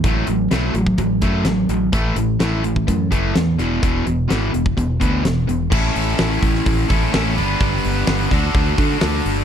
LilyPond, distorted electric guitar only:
\new Staff \with { instrumentName = "Distorted electric guitar" } { \clef bass \time 4/4 \key e \mixolydian \tempo 4 = 127 <a, fis a>8 <a, fis>8 <a, fis a>8 <a, fis>8 <a, fis>8 <a, fis a>8 <a, fis>8 <a, fis>8 | <a, e a>8 <a, e>8 <a, e a>8 <a, e>8 <a, e>8 <a, e a>8 <a, e>8 <e, b, e>8 | <e, b, e>8 <e, b,>8 <e, b, e>8 <e, b,>8 <e, b,>8 <e, b, e>8 <e, b,>8 <e, b,>8 | \key a \mixolydian <a, a cis' e' a'>2~ <a, a cis' e' a'>8 <a, a cis' e' a'>8 <a, a cis' e' a'>8 <g b d' b'>8~ |
<g b d' b'>4. <d d' fis' a'>2~ <d d' fis' a'>8 | }